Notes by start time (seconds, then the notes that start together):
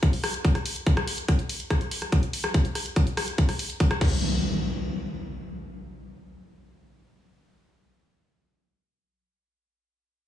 0.03 kick, closed hi-hat
0.13 open hi-hat
0.24 cross-stick, open hi-hat
0.34 closed hi-hat
0.45 kick, closed hi-hat
0.55 cross-stick, closed hi-hat
0.66 open hi-hat
0.76 closed hi-hat
0.87 kick, closed hi-hat
0.97 cross-stick, closed hi-hat
1.07 open hi-hat
1.18 closed hi-hat
1.28 kick, cross-stick, closed hi-hat
1.39 closed hi-hat
1.49 open hi-hat
1.60 closed hi-hat
1.70 kick, cross-stick, closed hi-hat
1.81 closed hi-hat
1.91 open hi-hat
2.02 cross-stick, closed hi-hat
2.12 kick, closed hi-hat
2.23 closed hi-hat
2.33 open hi-hat
2.44 cross-stick, closed hi-hat
2.54 kick, closed hi-hat
2.65 closed hi-hat
2.75 cross-stick, open hi-hat
2.86 closed hi-hat
2.96 kick, closed hi-hat
3.07 closed hi-hat
3.17 cross-stick, open hi-hat
3.28 closed hi-hat
3.38 kick, closed hi-hat
3.49 cross-stick, open hi-hat
3.59 open hi-hat
3.70 closed hi-hat
3.80 kick, closed hi-hat
3.91 cross-stick, closed hi-hat
4.01 kick, crash, impact